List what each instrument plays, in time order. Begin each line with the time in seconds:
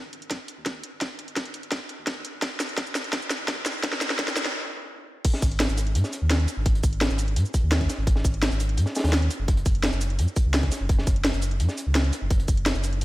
0.04 sub bass G#1
0.13 closed hi-hat
0.22 closed hi-hat
0.31 sub bass G#2, kick, snare, closed hi-hat
0.48 closed hi-hat
0.57 sub bass D#2
0.66 kick, snare, closed hi-hat
0.84 closed hi-hat
0.92 sub bass G#1
1.01 kick, snare, closed hi-hat
1.18 sub bass G#1, closed hi-hat
1.28 closed hi-hat
1.36 kick, snare, closed hi-hat
1.45 sub bass G#1, closed hi-hat
1.54 closed hi-hat
1.63 closed hi-hat
1.72 sub bass G#2, kick, snare, closed hi-hat
1.89 closed hi-hat
1.98 sub bass D#2
2.07 kick, snare, closed hi-hat
2.25 closed hi-hat
2.34 sub bass G#1
2.42 kick, snare, closed hi-hat
2.60 sub bass G#1, snare, closed hi-hat, shaker
2.69 closed hi-hat
2.78 kick, snare, closed hi-hat
2.87 sub bass G#1, shaker
2.95 snare, closed hi-hat, shaker
3.04 closed hi-hat
3.13 sub bass G#2, kick, snare, closed hi-hat
3.22 shaker
3.30 snare, closed hi-hat, shaker
3.40 sub bass D#2
3.48 kick, snare, closed hi-hat
3.66 snare, closed hi-hat, shaker
3.75 sub bass F#1
3.83 kick, snare, closed hi-hat
3.93 snare
4.01 sub bass F#1, snare, closed hi-hat, shaker
4.10 snare, closed hi-hat
4.19 kick, snare, closed hi-hat
4.28 sub bass F#1, snare, closed hi-hat, shaker
4.37 snare, closed hi-hat, shaker
4.45 snare, closed hi-hat
5.25 kick, closed hi-hat, crash
5.34 snare
5.42 sub bass G#1, kick, closed hi-hat, shaker
5.52 closed hi-hat
5.60 snare, closed hi-hat
5.69 sub bass G#1, closed hi-hat, shaker
5.77 closed hi-hat, shaker
5.87 closed hi-hat
5.95 sub bass G#2, closed hi-hat
6.04 snare, shaker
6.13 closed hi-hat, shaker
6.22 sub bass D#2
6.31 snare, closed hi-hat
6.40 closed hi-hat
6.48 closed hi-hat, shaker
6.57 sub bass G#1
6.66 kick, closed hi-hat
6.75 closed hi-hat
6.83 sub bass G#1, kick, closed hi-hat, shaker
6.93 closed hi-hat
7.01 snare, closed hi-hat
7.10 sub bass G#1, snare, shaker
7.18 closed hi-hat, shaker
7.28 closed hi-hat
7.36 sub bass G#2, closed hi-hat
7.45 shaker
7.54 kick, closed hi-hat, shaker
7.63 sub bass D#2
7.72 snare, closed hi-hat
7.81 kick, snare, closed hi-hat
7.89 snare, closed hi-hat, shaker
7.98 sub bass G#1
8.07 kick, closed hi-hat
8.16 snare
8.24 sub bass G#1, kick, closed hi-hat, shaker
8.34 closed hi-hat
8.42 snare, closed hi-hat
8.51 sub bass G#1, closed hi-hat, shaker
8.60 closed hi-hat, shaker
8.69 closed hi-hat
8.77 sub bass G#2, closed hi-hat
8.86 snare, shaker
8.95 snare, closed hi-hat, shaker
8.99 snare, closed hi-hat
9.04 sub bass D#2, snare, closed hi-hat
9.08 snare, closed hi-hat
9.12 snare, closed hi-hat
9.22 closed hi-hat
9.31 closed hi-hat, shaker
9.40 sub bass F#1
9.48 kick, closed hi-hat
9.57 closed hi-hat
9.66 sub bass F#1, kick, closed hi-hat, shaker
9.75 closed hi-hat
9.83 snare, closed hi-hat
9.92 sub bass F#1, snare, shaker
10.01 closed hi-hat, shaker
10.10 closed hi-hat
10.19 sub bass F#2, closed hi-hat
10.28 shaker
10.36 kick, closed hi-hat, shaker
10.45 sub bass C#2
10.54 snare, closed hi-hat
10.63 kick, snare, closed hi-hat
10.72 snare, closed hi-hat, shaker
10.81 sub bass F#1
10.89 kick, closed hi-hat
10.99 snare
11.07 sub bass F#1, kick, closed hi-hat, shaker
11.16 closed hi-hat
11.25 snare, closed hi-hat
11.34 sub bass F#1, closed hi-hat, shaker
11.42 closed hi-hat, shaker
11.51 closed hi-hat
11.60 sub bass F#2, closed hi-hat
11.69 snare, shaker
11.78 closed hi-hat, shaker
11.87 sub bass C#2
11.95 snare, closed hi-hat
12.04 closed hi-hat
12.13 closed hi-hat, shaker
12.22 sub bass F#1
12.30 kick, closed hi-hat
12.40 closed hi-hat
12.48 sub bass F#1, kick, closed hi-hat, shaker
12.57 closed hi-hat
12.66 snare, closed hi-hat
12.75 sub bass F#1, snare, shaker
12.84 closed hi-hat, shaker
12.93 closed hi-hat
13.01 sub bass B1, closed hi-hat